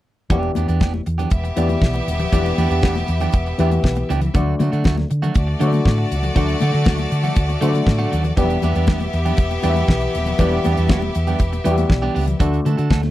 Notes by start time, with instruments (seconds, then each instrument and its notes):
0.30 fingered electric bass E1, clav E3 B3 G4 D5, clean electric guitar E3 B3 D4 G4, kick, closed hi-hat, muted conga, low conga
0.43 muted conga
0.55 fingered electric bass E2, clean electric guitar E3 B3 D4 G4, closed hi-hat, high conga
0.68 fingered electric bass E2, clean electric guitar E3 B3 D4 G4, closed hi-hat
0.80 fingered electric bass E1, clean electric guitar E3 B3 D4 G4, kick, snare, high conga
0.94 muted clean electric guitar stroke, muted conga, high conga
1.06 fingered electric bass E2, muted clean electric guitar stroke, closed hi-hat
1.18 clean electric guitar E3 B3 D4 G4, closed hi-hat, low conga
1.30 fingered electric bass E1, violin section B3 G4 E5, muted clean electric guitar stroke, kick, closed hi-hat
1.44 muted clean electric guitar stroke, closed hi-hat, muted conga
1.56 fingered electric bass E2, clav E3 B3 G4 D5, clean electric guitar E3 B3 D4 G4, closed hi-hat, high conga
1.69 muted clean electric guitar stroke, closed hi-hat, high conga
1.81 fingered electric bass B1, muted clean electric guitar stroke, kick, snare, muted conga
1.93 muted clean electric guitar stroke, closed hi-hat, muted conga
2.08 fingered electric bass D#1, closed hi-hat
2.20 muted clean electric guitar stroke, closed hi-hat, low conga
2.32 fingered electric bass E1, clav E3 B3 G4 D5, clean electric guitar E3 B3 D4 G4, kick, closed hi-hat, muted conga, low conga
2.46 closed hi-hat, muted conga
2.58 fingered electric bass E2, clean electric guitar E3 B3 D4 G4, closed hi-hat, high conga
2.71 fingered electric bass E2, clean electric guitar E3 B3 D4 G4, closed hi-hat
2.82 fingered electric bass E1, clean electric guitar E3 B3 D4 G4, kick, snare, high conga
2.96 muted clean electric guitar stroke, snare, muted conga, high conga
3.08 fingered electric bass E2, muted clean electric guitar stroke, closed hi-hat
3.20 clean electric guitar E3 B3 D4 G4, closed hi-hat, low conga
3.32 fingered electric bass E1, muted clean electric guitar stroke, kick, closed hi-hat
3.46 muted clean electric guitar stroke, closed hi-hat
3.58 fingered electric bass E2, clav E3 B3 G4 E5, clean electric guitar E3 B3 D4 G4, closed hi-hat, high conga
3.71 muted clean electric guitar stroke, closed hi-hat, high conga
3.84 fingered electric bass B1, muted clean electric guitar stroke, kick, snare, muted conga
3.95 muted clean electric guitar stroke, closed hi-hat, muted conga
4.09 fingered electric bass C#2, clean electric guitar E3 B3 D4 G4, closed hi-hat
4.21 muted clean electric guitar stroke, closed hi-hat, low conga
4.34 fingered electric bass D2, clav D3 A3 F#4 D5, clean electric guitar F#3 A3 D4 F#4, kick, closed hi-hat, muted conga, low conga
4.59 fingered electric bass D3, clean electric guitar F#3 A3 D4 F#4, closed hi-hat, high conga
4.72 fingered electric bass D3, clean electric guitar F#3 A3 D4 F#4, closed hi-hat
4.84 fingered electric bass D2, clean electric guitar F#3 A3 D4 F#4, kick, snare, high conga
4.97 muted clean electric guitar stroke, snare, muted conga, high conga
5.10 fingered electric bass D3, muted clean electric guitar stroke, closed hi-hat
5.22 clean electric guitar F#3 A3 D4 F#4, closed hi-hat, low conga
5.34 fingered electric bass D2, violin section A3 F#4 D5, kick, closed hi-hat, muted conga
5.47 muted clean electric guitar stroke
5.59 clav D3 A3 F#4 C#5, fingered electric bass D3, clean electric guitar F#3 A3 D4 F#4, closed hi-hat, high conga
5.67 clav D5
5.72 muted clean electric guitar stroke, closed hi-hat, high conga
5.85 fingered electric bass A2, muted clean electric guitar stroke, kick, snare
5.98 muted clean electric guitar stroke
6.11 fingered electric bass C#2, closed hi-hat
6.23 muted clean electric guitar stroke, closed hi-hat, low conga
6.35 fingered electric bass D2, clav D3 A3 F#4 D5, clean electric guitar F#3 A3 D4 F#4, kick, closed hi-hat, muted conga, low conga
6.48 closed hi-hat, muted conga
6.61 fingered electric bass D3, clean electric guitar F#3 A3 D4 F#4, closed hi-hat, high conga
6.74 fingered electric bass D3, clean electric guitar F#3 A3 D4 F#4, closed hi-hat
6.86 fingered electric bass D2, clean electric guitar F#3 A3 D4 F#4, kick, snare, muted conga, high conga
6.98 muted clean electric guitar stroke, snare, closed hi-hat, muted conga, high conga
7.11 fingered electric bass D3, muted clean electric guitar stroke, closed hi-hat
7.24 clean electric guitar F#3 A3 D4 F#4, closed hi-hat, low conga
7.35 fingered electric bass D2, muted clean electric guitar stroke, kick, closed hi-hat, muted conga
7.49 muted clean electric guitar stroke, closed hi-hat, muted conga
7.61 clav D3 A3 F#4 C5, fingered electric bass D3, clean electric guitar F#3 A3 D4 F#4, closed hi-hat, high conga
7.69 clav D5
7.73 muted clean electric guitar stroke, closed hi-hat, high conga
7.85 fingered electric bass A2, muted clean electric guitar stroke, kick, snare, muted conga
7.98 clean electric guitar F#3 A3 D4 F#4, muted conga
8.11 fingered electric bass D#2, clean electric guitar F#3 A3 D4 F#4, closed hi-hat
8.24 muted clean electric guitar stroke, closed hi-hat, low conga
8.37 fingered electric bass E1, clav E3 B3 G4 D5, clean electric guitar G3 B3 D4 G4, violin section B3 G4 E5, kick, closed hi-hat, muted conga, low conga
8.50 closed hi-hat, muted conga
8.62 fingered electric bass E2, clean electric guitar G3 B3 D4 G4, closed hi-hat, high conga
8.75 fingered electric bass E2, clean electric guitar G3 B3 D4 G4, closed hi-hat
8.87 clean electric guitar G3 B3 D4 G4, kick, snare, muted conga, high conga
9.00 muted clean electric guitar stroke, snare, closed hi-hat, high conga
9.13 fingered electric bass E2, muted clean electric guitar stroke, closed hi-hat
9.25 clean electric guitar G3 B3 D4 G4, closed hi-hat, low conga
9.37 fingered electric bass E1, muted clean electric guitar stroke, kick, closed hi-hat, muted conga
9.51 muted clean electric guitar stroke, closed hi-hat, muted conga
9.63 fingered electric bass E2, clav E3 B3 G4 D5, clean electric guitar G3 B3 D4 G4, closed hi-hat, high conga
9.70 clav E5
9.75 muted clean electric guitar stroke, closed hi-hat, high conga
9.88 fingered electric bass B1, muted clean electric guitar stroke, kick, snare, muted conga
10.00 muted clean electric guitar stroke, closed hi-hat
10.15 fingered electric bass D#1, closed hi-hat
10.26 muted clean electric guitar stroke, closed hi-hat, low conga
10.38 fingered electric bass E1, clav E3 B3 G4 D5, clean electric guitar G3 B3 D4 G4, kick, closed hi-hat, muted conga, low conga
10.52 muted conga
10.64 fingered electric bass E2, clean electric guitar G3 B3 D4 G4, closed hi-hat, high conga
10.77 fingered electric bass E2, clean electric guitar G3 B3 D4 G4, closed hi-hat
10.89 fingered electric bass E1, clean electric guitar G3 B3 D4 G4, kick, snare, muted conga, high conga
11.02 muted clean electric guitar stroke, muted conga, high conga
11.15 fingered electric bass E2, muted clean electric guitar stroke, closed hi-hat
11.27 clean electric guitar G3 B3 D4 G4, closed hi-hat, low conga
11.39 fingered electric bass E1, muted clean electric guitar stroke, kick, closed hi-hat, muted conga
11.53 muted clean electric guitar stroke, closed hi-hat, muted conga
11.64 fingered electric bass E2, clav E3 B3 F#4 D5 E5, clean electric guitar G3 B3 D4 G4, closed hi-hat, high conga
11.72 clav G4
11.77 muted clean electric guitar stroke, closed hi-hat, high conga
11.90 fingered electric bass B1, clav D5, muted clean electric guitar stroke, kick, snare
12.02 clean electric guitar G3 B3 D4 G4
12.14 fingered electric bass C#2, clean electric guitar G3 B3 D4 G4, open hi-hat
12.27 muted clean electric guitar stroke, closed hi-hat, low conga
12.40 fingered electric bass D2, clav D3 A3 F#4 D5, clean electric guitar A3 D4 F#4 A4, kick, closed hi-hat, muted conga, low conga
12.53 closed hi-hat
12.65 fingered electric bass D3, clean electric guitar A3 D4 F#4 A4, closed hi-hat, high conga
12.77 fingered electric bass D3, clean electric guitar A3 D4 F#4 A4, closed hi-hat
12.90 fingered electric bass D2, clean electric guitar A3 D4 F#4 A4, kick, snare, high conga
13.03 muted clean electric guitar stroke, snare, muted conga, high conga